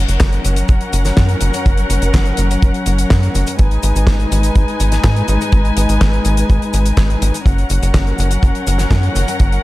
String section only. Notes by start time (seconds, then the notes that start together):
Already playing: F#3 C#4 A#4 F#5
3.59 G#3 D#4 B4 G#5
7.46 F#3 C#4 A#4 F#5